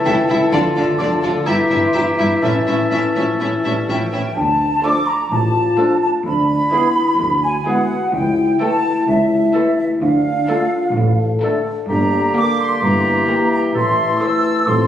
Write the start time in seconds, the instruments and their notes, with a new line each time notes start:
Already playing: bassoon E3, clarinet E4, oboe A4, flute section A5
0.05 double bass section C#2, tuba C#2, cello section C#3, french horn section A3 E4, viola section E4, violin section A4 E5, celesta G5
0.28 double bass section C#2, tuba C#2, cello section C#3, viola section E4, violin section A4 E5
0.51 double bass section D2, tuba D2, cello section D3, bassoon D3, french horn section A3 F4, viola section F4, clarinet F4, violin section A4 D5, celesta A5, flute section A5
0.76 double bass section D2, tuba D2, cello section D3, viola section F4, violin section A4 D5
0.98 double bass section D2, tuba D2, cello section D3, french horn section A3 F4, viola section F4, violin section A4 D5, celesta D6
1.22 double bass section D2, tuba D2, cello section D3, viola section F4, violin section A4 D5
1.45 tuba G1, double bass section G1, cello section G2, french horn section E3 E4, bassoon E3, clarinet E4, viola section E4, oboe G4, violin section G4 E5, flute section E5, celesta A#5
1.70 tuba G1, double bass section G1, cello section G2, viola section E4, violin section G4 E5
1.88 celesta C6
1.93 tuba G1, double bass section G1, cello section G2, french horn section E3 E4, viola section E4, violin section G4 E5, celesta A#5
2.17 tuba G1, double bass section G1, cello section G2, viola section E4, violin section G4 E5
2.42 double bass section A1, tuba A1, cello section A2, french horn section E3 C#4, clarinet C#4, viola section C#4, violin section E4 E5, oboe A4, celesta A5
2.67 double bass section A1, tuba A1, cello section A2, viola section C#4, violin section E4 E5
2.91 tuba A1, double bass section A1, cello section A2, french horn section E3, viola section C#4, violin section E4 E5
3.16 double bass section A1, tuba A1, cello section A2, french horn section F3, viola section C#4, violin section E4 E5
3.40 double bass section A1, tuba A1, cello section A2, french horn section E3, viola section C#4, violin section E4 E5
3.64 double bass section A1, tuba A1, cello section A2, french horn section G3, viola section C#4, violin section E4 E5, flute section A5
3.88 double bass section A1, tuba A1, cello section A2, french horn section F3, viola section C#4, violin section E4 E5, flute section G5
4.13 double bass section A1, tuba A1, cello section A2, french horn section E3, viola section C#4, violin section E4 E5
4.36 double bass section D2, tuba D2, cello section D2, flute section A5
4.83 bassoon F3, viola section A3, clarinet D4, violin section F4 D5, oboe A4, flute section D6
5.07 flute section A#5
5.31 tuba A1, double bass section A1, cello section A2, french horn section F4, flute section A5
5.78 bassoon F3, viola section A3, clarinet D4, violin section F4 D5, oboe A4
6.02 flute section A5
6.25 cello section D2, tuba D2, double bass section D2, french horn section D4, flute section B5
6.72 bassoon E3, viola section G#3, clarinet B3, french horn section E4, violin section E4 B4, oboe G#4
7.19 cello section D2, double bass section D2, tuba D2, french horn section F#4
7.43 flute section G#5
7.67 bassoon E3, viola section G#3, clarinet B3, violin section E4 B4, oboe G#4, flute section F#5
8.12 cello section C#2, double bass section C#2, tuba C#2, french horn section E4, flute section G5
8.60 bassoon E3, viola section A3, clarinet A3, violin section E4 A4, french horn section E4, oboe A4, flute section A5
9.07 cello section C#2, tuba C#2, double bass section C#2, flute section E5
9.54 bassoon E3, viola section A3, clarinet A3, violin section E4 A4, oboe A4
9.78 flute section E5
10.01 cello section D2, double bass section D2, tuba D2, french horn section D4, flute section F5
10.48 bassoon D3, viola section A3, clarinet A3, violin section D4 A4, french horn section F4, oboe A4
10.95 tuba A1, double bass section A1, cello section A2, french horn section A4
11.42 bassoon D3, viola section A3, clarinet A3, violin section D4 A4, oboe A4
11.89 double bass section G1, tuba G1, cello section G2, bassoon D3, clarinet A#3, french horn section G4, oboe G4, flute section A#5
12.34 viola section A#3, violin section D4 G4, french horn section A#4, flute section D6
12.60 flute section C6
12.82 tuba G1, double bass section G1, cello section G2, bassoon E3, french horn section G4, flute section A#5
13.28 viola section A#3, violin section E4 G4
13.53 flute section A#5
13.74 tuba A1, double bass section A1, cello section A2, clarinet A3, french horn section E4, oboe A4, flute section C6
14.21 viola section A3, violin section E4 C5, flute section E6
14.67 double bass section A1, tuba A1, cello section A2, bassoon F3, clarinet C4, french horn section A4, flute section C6